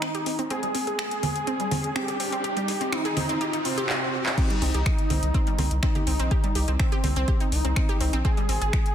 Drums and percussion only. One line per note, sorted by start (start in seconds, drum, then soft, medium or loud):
0.02 finger snap loud
0.02 closed hi-hat medium
0.15 closed hi-hat medium
0.26 open hi-hat loud
0.39 closed hi-hat medium
0.50 closed hi-hat medium
0.63 closed hi-hat medium
0.75 open hi-hat loud
0.87 closed hi-hat medium
0.99 finger snap loud
0.99 closed hi-hat medium
1.11 closed hi-hat medium
1.23 open hi-hat loud
1.23 low conga medium
1.36 closed hi-hat medium
1.47 closed hi-hat medium
1.60 closed hi-hat medium
1.71 open hi-hat loud
1.71 low conga medium
1.84 closed hi-hat medium
1.96 finger snap loud
1.96 closed hi-hat medium
2.08 closed hi-hat medium
2.20 open hi-hat loud
2.32 closed hi-hat medium
2.44 closed hi-hat medium
2.57 closed hi-hat medium
2.68 open hi-hat loud
2.81 closed hi-hat medium
2.92 finger snap loud
2.92 closed hi-hat medium
3.05 closed hi-hat medium
3.17 finger snap soft
3.17 open hi-hat loud
3.17 low conga medium
3.29 closed hi-hat medium
3.41 closed hi-hat medium
3.53 closed hi-hat medium
3.65 open hi-hat loud
3.78 closed hi-hat medium
3.89 clap loud
4.26 clap medium
4.38 kick loud
4.38 closed hi-hat medium
4.38 crash loud
4.50 closed hi-hat medium
4.62 open hi-hat loud
4.74 closed hi-hat medium
4.86 finger snap loud
4.86 kick loud
4.86 closed hi-hat medium
4.99 closed hi-hat medium
5.10 open hi-hat loud
5.10 low conga medium
5.23 closed hi-hat medium
5.34 kick loud
5.34 closed hi-hat medium
5.47 closed hi-hat medium
5.58 open hi-hat loud
5.58 low conga medium
5.71 closed hi-hat medium
5.83 finger snap loud
5.83 kick loud
5.83 closed hi-hat medium
5.95 closed hi-hat medium
5.95 low conga medium
6.07 open hi-hat loud
6.19 closed hi-hat medium
6.31 kick loud
6.31 closed hi-hat medium
6.44 closed hi-hat medium
6.55 open hi-hat loud
6.68 closed hi-hat medium
6.80 finger snap loud
6.80 kick loud
6.80 closed hi-hat medium
6.92 closed hi-hat medium
7.04 open hi-hat loud
7.04 low conga medium
7.16 closed hi-hat medium
7.28 kick loud
7.28 closed hi-hat medium
7.40 closed hi-hat medium
7.52 open hi-hat loud
7.65 closed hi-hat medium
7.76 finger snap loud
7.76 kick loud
7.76 closed hi-hat medium
7.89 closed hi-hat medium
8.01 open hi-hat loud
8.13 closed hi-hat medium
8.25 kick loud
8.25 closed hi-hat medium
8.37 closed hi-hat medium
8.49 open hi-hat loud
8.62 closed hi-hat medium
8.73 finger snap loud
8.73 kick loud
8.73 closed hi-hat medium
8.86 closed hi-hat medium